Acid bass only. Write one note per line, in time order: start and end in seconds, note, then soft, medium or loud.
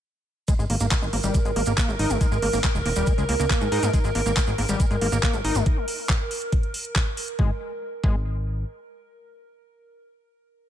0.48 0.54 G#3 medium
0.59 0.65 G#3 medium
0.70 0.76 A#3 medium
0.81 0.86 A#3 medium
0.91 0.95 G#3 medium
1.02 1.06 G#3 medium
1.13 1.16 A#3 medium
1.24 1.36 G3 medium
1.35 1.40 G#3 medium
1.45 1.51 G#3 medium
1.56 1.62 A#3 medium
1.67 1.73 A#3 medium
1.78 1.90 A#3 medium
1.88 1.92 G#3 medium
1.99 2.12 D#4 loud
2.10 2.19 G#3 medium
2.21 2.27 G#3 medium
2.32 2.37 G#3 medium
2.42 2.48 A#3 medium
2.53 2.59 A#3 medium
2.64 2.67 G#3 medium
2.75 2.78 G#3 medium
2.86 2.89 A#3 medium
2.96 3.09 G3 medium
3.07 3.13 G#3 medium
3.18 3.24 G#3 medium
3.29 3.35 A#3 medium
3.40 3.45 A#3 medium
3.50 3.63 A#3 medium
3.61 3.65 G#3 medium
3.72 3.84 D#4 loud
3.83 3.91 G#3 medium
3.93 3.99 G#3 medium
4.04 4.10 G#3 medium
4.15 4.21 A#3 medium
4.26 4.32 A#3 medium
4.37 4.40 G#3 medium
4.47 4.51 G#3 medium
4.58 4.62 A#3 medium
4.69 4.81 G3 medium
4.80 4.86 G#3 medium
4.91 4.96 G#3 medium
5.01 5.07 A#3 medium
5.12 5.18 A#3 medium
5.23 5.35 A#3 medium
5.34 5.37 G#3 medium
5.45 5.57 D#4 loud
5.55 5.64 G#3 medium
7.39 7.51 G#3 medium
8.04 8.16 G#3 medium